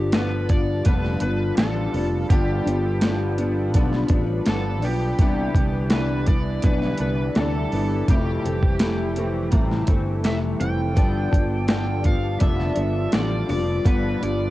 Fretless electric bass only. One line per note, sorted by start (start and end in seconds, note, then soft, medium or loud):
0.00 0.81 G1 medium
0.86 1.15 F1 loud
1.21 1.50 G1 medium
1.57 1.86 A1 medium
1.94 2.23 F1 medium
2.30 2.59 G1 loud
2.66 3.75 G1 medium
3.75 4.04 B1 medium
4.10 4.39 A1 medium
4.47 4.83 G1 medium
4.83 5.12 B1 medium
5.19 5.48 C2 loud
5.55 6.59 C2 medium
6.64 6.92 B1 medium
7.00 7.28 C2 medium
7.36 7.65 D2 medium
7.72 8.01 G1 medium
8.08 8.37 F1 loud
8.44 9.48 F1 medium
9.53 9.82 A1 medium
9.88 10.24 G1 medium
10.24 10.53 F1 medium
10.60 10.97 F1 medium
10.97 11.26 G1 loud
11.33 12.37 G1 medium
12.41 12.70 F1 medium
12.77 13.06 G1 medium
13.13 13.42 A1 medium
13.50 13.79 F1 medium
13.86 14.15 G1 loud
14.22 14.50 G1 medium